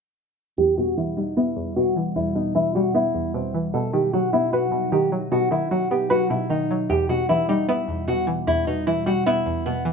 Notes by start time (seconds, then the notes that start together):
0.58 E2 B2 G3 G4
0.77 B2 F#4
0.97 E3 E4
1.17 G3 D#4
1.37 B3 E4
1.57 E2
1.76 B2 F#4
1.96 E3
2.16 E2 E4
2.35 B2 D#4
2.55 E3 E4
2.75 G3 F#4
2.94 B3 E4
3.15 E2
3.34 B2 C4
3.54 E3
3.74 B2 F#3 D#4 A4
3.93 D#3 G4
4.13 F#3 F#4
4.33 B3 E4
4.53 F#4 B4
4.72 B2
4.92 D#3 G4
5.12 F#3
5.32 B2 F#4
5.51 D#3 E4
5.71 F#3 F#4
5.91 B3 G4
6.10 F#4 B4
6.30 B2 E4
6.50 D#3 D#4
6.71 F#3
6.90 E2 B2 G3 G4
7.09 B2 F#4
7.29 E3 E4
7.49 G3 D#4
7.68 B3 E4
7.88 E2
8.08 B2 F#4
8.27 E3
8.47 E2 E4
8.67 B2 D#4
8.87 E3 E4
9.06 G3 F#4
9.26 B3 E4
9.46 E2
9.66 B2 B3
9.85 E3